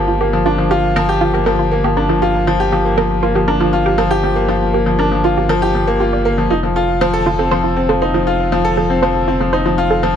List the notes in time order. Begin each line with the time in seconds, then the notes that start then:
Already playing: G1 F3 A#3 D4 F4 G4
0.08 F4
0.21 A#3 G4
0.33 F3
0.46 D4 F4
0.58 F3
0.71 F4 G4
0.96 F3 A#4
1.09 G4
1.21 F3 F4
1.34 A#3 G4
1.46 F3 A#4
1.59 F4
1.71 A#3
1.84 F3 G4
1.97 D4 A#4
2.09 F3 F4
2.22 F4 G4
2.47 F3 F4
2.60 G4
2.72 F3 G4
2.85 A#3
2.98 F3 A#4
3.23 A#3 F4
3.35 F3 G4
3.48 D4 A#4
3.60 F3 F4
3.73 F4
3.86 G4
3.98 F3 A#4
4.11 F4 G4
4.23 F3 G4
4.36 A#3
4.49 F3 F4
4.73 A#3 G4
4.86 F3
4.99 D4 A#4
5.12 F3
5.24 F4
5.38 G4
5.49 F3 A#4
5.62 F4 G4
5.75 F3
5.87 A#3 A#4
6.00 F4 G4
6.13 D5
6.25 A#3 A#4
6.38 F3
6.50 F1 D#4 F4
6.63 F3
6.76 F4 A4
7.01 F3 C5
7.14 A4
7.26 F3 F4
7.39 C4 A4
7.51 F3 C5
7.64 F4
7.76 C4
7.89 F3 A4
8.02 D#4 C5
8.14 F3 F4
8.27 F4 A4
8.52 F3 F4
8.65 A4
8.77 F3 A4
8.90 C4
9.02 F3 C5
9.28 C4 F4
9.40 F3 A4
9.53 D#4 C5
9.66 F3 F4
9.78 F4
9.91 A4
10.03 F3 C5